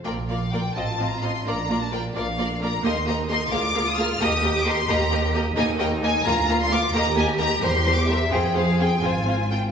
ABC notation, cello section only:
X:1
M:6/8
L:1/8
Q:3/8=87
K:Bb
V:1 name="Cello section"
z3 F3 | D6 | E3 F3 | G3 G3 |
[K:Eb] E3 F3 | G6 | A3 F3 |]